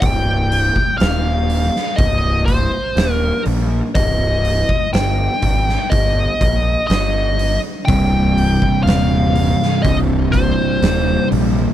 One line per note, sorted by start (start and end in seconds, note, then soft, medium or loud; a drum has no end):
0.01 0.70 C1 loud
0.01 0.97 G5 loud
0.01 kick loud
0.01 open hi-hat medium
0.52 open hi-hat medium
0.76 kick medium
0.98 1.68 D#1 medium
0.98 2.01 F5 loud
0.98 snare loud
0.98 open hi-hat medium
1.50 open hi-hat medium
1.76 snare soft
1.96 2.66 C1 medium
1.96 2.45 D#5 medium
1.96 kick loud
1.96 open hi-hat medium
2.46 3.13 C5 medium
2.46 kick medium
2.46 open hi-hat medium
2.96 3.30 D#1 medium
2.96 snare loud
2.96 open hi-hat medium
3.13 3.41 A#4 medium
3.46 3.80 A#1 medium
3.46 open hi-hat medium
3.95 4.62 C1 loud
3.95 4.90 D#5 loud
3.95 kick loud
3.95 open hi-hat medium
4.45 open hi-hat medium
4.69 kick medium
4.93 5.27 G1 medium
4.93 5.95 G5 loud
4.93 snare loud
4.93 open hi-hat medium
5.42 5.76 G#1 medium
5.42 kick medium
5.42 open hi-hat medium
5.69 snare soft
5.90 6.25 G1 medium
5.90 6.86 D#5 medium
5.90 kick loud
5.90 open hi-hat medium
6.41 6.74 A#1 medium
6.41 kick medium
6.41 open hi-hat medium
6.87 7.57 G1 medium
6.87 7.58 D#5 medium
6.87 snare loud
6.87 open hi-hat medium
7.39 open hi-hat medium
7.85 8.55 C1 medium
7.85 9.83 C2 medium
7.85 8.83 G5 loud
7.85 kick loud
7.85 open hi-hat medium
7.89 9.82 G2 medium
7.89 9.87 C3 medium
8.38 open hi-hat medium
8.62 kick medium
8.83 9.53 D#1 medium
8.83 9.86 F5 medium
8.87 snare loud
8.87 open hi-hat medium
9.36 open hi-hat medium
9.62 snare soft
9.82 10.52 C1 medium
9.82 11.74 C2 medium
9.82 11.74 G2 medium
9.82 9.96 D#5 medium
9.82 kick loud
9.82 open hi-hat medium
9.87 11.74 C3 medium
10.32 11.27 C5 medium
10.32 kick medium
10.32 open hi-hat medium
10.82 11.16 D#1 medium
10.82 snare loud
10.82 open hi-hat medium
11.32 11.65 A#1 medium
11.32 open hi-hat medium